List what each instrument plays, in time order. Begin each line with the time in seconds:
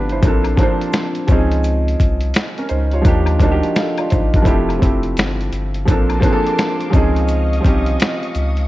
Already playing: sub bass G1, felt piano F3 A3 B3 C4 D4 E4 G4 B4
0.09 felt piano E4 C5, closed hi-hat
0.22 sub bass A#1, felt piano F3 A#3 C4, kick, closed hi-hat, shaker
0.26 felt piano D4 A4
0.44 closed hi-hat, high woodblock
0.57 felt piano F3 A#3 C4, kick, closed hi-hat, shaker
0.61 felt piano D4 C5
0.82 closed hi-hat
0.93 finger snap, snare, closed hi-hat, shaker
1.15 closed hi-hat
1.27 sub bass C#2, felt piano F3 C4 C#4, kick, closed hi-hat, shaker
1.32 felt piano D#4 G#4
1.52 closed hi-hat
1.64 closed hi-hat, shaker
1.88 closed hi-hat
2.00 sub bass C2, kick, closed hi-hat, shaker
2.21 closed hi-hat
2.34 finger snap, snare, closed hi-hat, shaker
2.58 felt piano C#4 A#4, closed hi-hat
2.69 sub bass C#2, felt piano D#4 C5, closed hi-hat, shaker
2.92 felt piano F4 C#5, closed hi-hat
3.02 sub bass D#2, felt piano F3 A#3 D4, kick, closed hi-hat, shaker
3.06 felt piano D#4 G4
3.26 closed hi-hat, high woodblock
3.39 sub bass D2, felt piano F3 A#3 D4, kick, closed hi-hat, shaker
3.43 felt piano D#4 F#4
3.52 felt piano G4
3.63 closed hi-hat
3.75 felt piano A4 F5, finger snap, snare, closed hi-hat, shaker
3.97 felt piano F4 D5, closed hi-hat, high woodblock
4.10 sub bass A#1, felt piano D#4 C5, kick, closed hi-hat, shaker
4.34 felt piano D4 A#4, kick, closed hi-hat
4.42 sub bass F1, felt piano F3 A3 C4, kick, closed hi-hat
4.46 felt piano E4 G4, shaker
4.69 closed hi-hat, high woodblock
4.79 sub bass F1, felt piano F3 A3 C4, kick, closed hi-hat, shaker
4.83 felt piano E4 G4
5.03 closed hi-hat
5.17 sub bass G1, finger snap, snare, closed hi-hat, shaker
5.41 closed hi-hat
5.52 sub bass G1, closed hi-hat, shaker
5.74 closed hi-hat
5.85 sub bass A#1, felt piano F3 A#3 C4, string machine A#3 A5 C6 D6, kick, closed hi-hat, shaker
5.90 felt piano D4 A4
6.09 closed hi-hat, high woodblock
6.20 felt piano F3 A#3 C4, kick, closed hi-hat, shaker
6.24 felt piano D4 G#4
6.32 felt piano A4
6.47 closed hi-hat
6.58 finger snap, snare, closed hi-hat, shaker
6.81 closed hi-hat
6.90 sub bass C#2, felt piano F3 C4 C#4, string machine D#5 F5 C#6 D#6, kick, closed hi-hat, shaker
6.95 felt piano D#4 G#4
7.17 closed hi-hat
7.28 closed hi-hat, shaker
7.53 closed hi-hat
7.61 felt piano F3 C4 C#4, kick, shaker
7.65 sub bass C2, felt piano D#4 G4, closed hi-hat
7.86 closed hi-hat
8.00 finger snap, snare, closed hi-hat, shaker
8.23 closed hi-hat
8.35 sub bass C#2, closed hi-hat, shaker
8.57 closed hi-hat